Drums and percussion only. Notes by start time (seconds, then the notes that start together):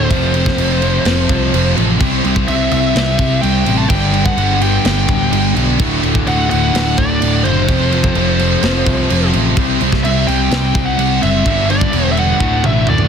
0.11 kick, crash
0.34 crash
0.46 kick, snare
0.58 crash
0.82 crash
1.05 snare, crash
1.29 kick, crash
1.54 crash
1.77 crash
2.00 kick, crash
2.24 crash
2.36 kick
2.48 crash
2.71 crash
2.96 snare, crash
3.19 kick, crash
3.43 crash
3.66 crash
3.90 kick, crash
4.14 crash
4.26 kick
4.38 crash
4.61 crash
4.85 snare, crash
5.09 kick, crash
5.33 crash
5.56 crash
5.80 kick, crash
6.03 crash
6.15 kick
6.27 crash
6.51 crash
6.75 snare, crash
6.98 kick, crash
7.22 crash
7.45 crash
7.69 kick, crash
7.92 crash
8.04 kick
8.15 crash
8.39 crash
8.63 snare, crash
8.86 kick, crash
9.10 crash
9.33 crash
9.57 kick, crash
9.81 crash
9.92 kick, snare
10.05 crash
10.28 crash
10.51 snare, crash
10.75 kick, crash
10.99 crash
11.23 crash
11.46 kick, crash
11.70 crash
11.81 kick
11.93 crash
12.17 crash
12.40 kick
12.64 mid tom
12.87 mid tom
12.98 mid tom